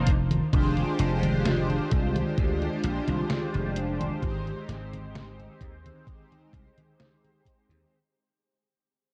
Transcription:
0.00 0.40 F1 medium
0.07 kick medium
0.07 closed hi-hat medium
0.31 closed hi-hat medium
0.31 high conga medium
0.52 0.83 F1 loud
0.52 2.78 G#3 medium
0.52 2.78 D4 medium
0.52 2.79 F4 medium
0.52 2.79 G4 medium
0.52 2.80 C5 loud
0.52 kick loud
0.52 closed hi-hat medium
0.52 high conga soft
0.77 closed hi-hat soft
0.77 high conga soft
0.99 1.78 F1 medium
0.99 closed hi-hat medium
1.23 closed hi-hat medium
1.23 high conga medium
1.46 snare loud
1.46 closed hi-hat medium
1.46 high conga soft
1.70 closed hi-hat soft
1.70 high conga soft
1.91 2.21 C2 medium
1.91 kick loud
1.91 closed hi-hat medium
2.16 closed hi-hat medium
2.16 high conga medium
2.38 2.67 D2 medium
2.38 kick loud
2.38 closed hi-hat medium
2.38 high conga soft
2.62 closed hi-hat soft
2.62 high conga soft
2.84 2.99 A#1 medium
2.84 closed hi-hat medium
3.08 3.22 C2 loud
3.08 closed hi-hat medium
3.08 high conga medium
3.30 snare loud
3.30 closed hi-hat medium
3.30 high conga soft
3.54 4.09 F1 medium
3.54 closed hi-hat soft
3.54 high conga soft
3.76 closed hi-hat medium
4.01 closed hi-hat medium
4.01 high conga medium
4.20 4.52 G#1 loud
4.20 6.47 G#3 medium
4.20 6.47 C4 medium
4.20 6.48 D#4 medium
4.20 6.48 G4 medium
4.20 6.48 C5 loud
4.20 kick loud
4.20 closed hi-hat medium
4.20 high conga soft
4.47 closed hi-hat soft
4.47 high conga soft
4.68 5.47 G#1 loud
4.68 snare medium
4.68 closed hi-hat loud
4.93 closed hi-hat medium
4.93 high conga medium
5.15 snare loud
5.15 closed hi-hat medium
5.15 high conga soft
5.40 closed hi-hat soft
5.40 high conga soft
5.61 5.90 D#2 medium
5.61 kick loud
5.61 closed hi-hat medium
5.86 closed hi-hat medium
5.86 high conga medium
6.07 kick loud
6.07 closed hi-hat medium
6.07 high conga soft
6.32 closed hi-hat soft
6.32 high conga soft
6.53 6.68 C2 medium
6.53 kick loud
6.53 closed hi-hat loud
6.78 closed hi-hat medium
6.78 high conga medium
7.00 snare loud
7.00 closed hi-hat medium
7.00 high conga soft
7.24 closed hi-hat soft
7.24 high conga soft
7.45 kick medium
7.45 closed hi-hat loud
7.69 7.83 D#2 medium
7.69 closed hi-hat medium
7.69 high conga medium

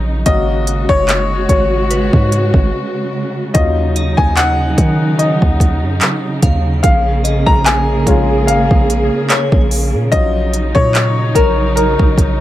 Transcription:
0.00 0.24 A#1 loud
0.00 0.22 C#3 medium
0.00 0.23 F#3 medium
0.00 0.23 D#4 medium
0.00 0.26 D#5 loud
0.26 0.87 G#1 loud
0.26 12.40 C#3 medium
0.26 3.52 G#3 medium
0.26 1.45 A#3 medium
0.26 1.46 C#4 soft
0.26 3.52 F#4 medium
0.26 1.46 F#4 medium
0.26 0.91 D#5 loud
0.26 kick loud
0.26 closed hi-hat medium
0.67 closed hi-hat medium
0.89 1.47 F#1 loud
0.89 1.45 C#5 loud
0.89 kick medium
1.09 clap loud
1.09 closed hi-hat medium
1.49 2.10 G#1 loud
1.49 3.10 C#5 loud
1.49 kick medium
1.49 closed hi-hat medium
1.91 2.94 B4 medium
1.91 closed hi-hat medium
2.13 2.52 G#2 loud
2.13 kick loud
2.32 closed hi-hat medium
2.54 2.72 G#1 loud
2.54 kick loud
3.54 4.16 D#2 loud
3.54 6.80 F#3 medium
3.54 4.11 F#3 medium
3.54 4.11 C#4 soft
3.54 6.80 D#4 medium
3.54 4.11 F4 medium
3.54 4.14 D#5 medium
3.54 kick loud
3.54 closed hi-hat medium
3.96 4.99 D#5 medium
3.96 closed hi-hat medium
4.17 4.76 D#2 loud
4.17 4.37 G#5 loud
4.17 kick loud
4.36 5.21 F#5 loud
4.36 clap loud
4.36 closed hi-hat medium
4.78 5.39 D#3 loud
4.78 kick loud
4.78 closed hi-hat medium
5.19 5.97 D#5 medium
5.19 closed hi-hat medium
5.42 5.84 D#2 loud
5.42 kick loud
5.60 kick medium
5.60 closed hi-hat medium
5.83 6.01 F#2 loud
6.01 clap loud
6.01 closed hi-hat medium
6.42 6.82 D#2 loud
6.42 7.21 F5 medium
6.42 kick medium
6.42 closed hi-hat medium
6.83 7.45 A#1 loud
6.83 10.09 A#3 medium
6.83 10.09 G#4 medium
6.83 7.48 F5 medium
6.83 kick loud
6.83 closed hi-hat medium
7.24 8.27 D#5 medium
7.24 closed hi-hat medium
7.46 8.05 A#1 loud
7.46 7.66 A#5 loud
7.46 kick medium
7.66 8.50 G#5 loud
7.66 clap loud
7.66 closed hi-hat medium
8.07 8.50 A#1 loud
8.07 8.63 G#3 medium
8.07 8.63 C#4 medium
8.07 8.63 F4 medium
8.07 kick medium
8.07 closed hi-hat medium
8.47 8.69 G#1 loud
8.47 9.26 F5 medium
8.47 closed hi-hat medium
8.71 9.10 A#1 loud
8.71 kick loud
8.90 closed hi-hat medium
9.30 10.33 C#5 medium
9.30 clap loud
9.30 closed hi-hat medium
9.52 9.95 A#1 loud
9.52 kick medium
9.71 open hi-hat medium
9.94 10.12 A#2 loud
10.12 10.73 A#1 loud
10.12 12.40 F#3 medium
10.12 12.40 C#4 medium
10.12 12.40 D#4 medium
10.12 12.40 F4 medium
10.12 10.77 D#5 loud
10.12 kick loud
10.12 closed hi-hat medium
10.54 closed hi-hat medium
10.75 11.33 A#2 loud
10.75 11.37 C#5 loud
10.75 kick loud
10.95 clap loud
10.95 closed hi-hat medium
11.35 11.96 A#1 loud
11.35 11.74 A#4 medium
11.35 12.39 A#4 medium
11.35 kick medium
11.35 closed hi-hat medium
11.76 12.40 A#4 loud
11.76 closed hi-hat medium
11.99 12.40 A#1 loud
11.99 kick loud
12.18 kick medium
12.18 closed hi-hat medium

